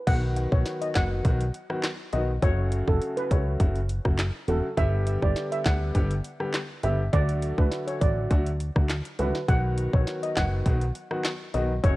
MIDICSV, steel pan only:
0, 0, Header, 1, 2, 480
1, 0, Start_track
1, 0, Tempo, 588235
1, 58, Time_signature, 4, 2, 24, 8
1, 9763, End_track
2, 0, Start_track
2, 0, Title_t, "Steel pan"
2, 0, Program_c, 0, 114
2, 57, Note_on_c, 0, 78, 99
2, 140, Note_off_c, 0, 78, 0
2, 425, Note_on_c, 0, 73, 78
2, 499, Note_off_c, 0, 73, 0
2, 666, Note_on_c, 0, 75, 78
2, 739, Note_off_c, 0, 75, 0
2, 778, Note_on_c, 0, 78, 91
2, 860, Note_off_c, 0, 78, 0
2, 1738, Note_on_c, 0, 75, 73
2, 1821, Note_off_c, 0, 75, 0
2, 1978, Note_on_c, 0, 73, 113
2, 2061, Note_off_c, 0, 73, 0
2, 2346, Note_on_c, 0, 69, 82
2, 2419, Note_off_c, 0, 69, 0
2, 2585, Note_on_c, 0, 71, 88
2, 2658, Note_off_c, 0, 71, 0
2, 2698, Note_on_c, 0, 73, 76
2, 2781, Note_off_c, 0, 73, 0
2, 3658, Note_on_c, 0, 69, 81
2, 3741, Note_off_c, 0, 69, 0
2, 3898, Note_on_c, 0, 76, 99
2, 3981, Note_off_c, 0, 76, 0
2, 4265, Note_on_c, 0, 74, 79
2, 4339, Note_off_c, 0, 74, 0
2, 4505, Note_on_c, 0, 76, 79
2, 4578, Note_off_c, 0, 76, 0
2, 4619, Note_on_c, 0, 78, 92
2, 4701, Note_off_c, 0, 78, 0
2, 5579, Note_on_c, 0, 76, 74
2, 5661, Note_off_c, 0, 76, 0
2, 5819, Note_on_c, 0, 74, 111
2, 5901, Note_off_c, 0, 74, 0
2, 6186, Note_on_c, 0, 71, 83
2, 6259, Note_off_c, 0, 71, 0
2, 6426, Note_on_c, 0, 73, 82
2, 6499, Note_off_c, 0, 73, 0
2, 6538, Note_on_c, 0, 74, 76
2, 6621, Note_off_c, 0, 74, 0
2, 7498, Note_on_c, 0, 71, 78
2, 7580, Note_off_c, 0, 71, 0
2, 7738, Note_on_c, 0, 78, 99
2, 7821, Note_off_c, 0, 78, 0
2, 8105, Note_on_c, 0, 73, 76
2, 8178, Note_off_c, 0, 73, 0
2, 8346, Note_on_c, 0, 75, 77
2, 8419, Note_off_c, 0, 75, 0
2, 8458, Note_on_c, 0, 78, 91
2, 8541, Note_off_c, 0, 78, 0
2, 9417, Note_on_c, 0, 75, 72
2, 9500, Note_off_c, 0, 75, 0
2, 9658, Note_on_c, 0, 73, 111
2, 9740, Note_off_c, 0, 73, 0
2, 9763, End_track
0, 0, End_of_file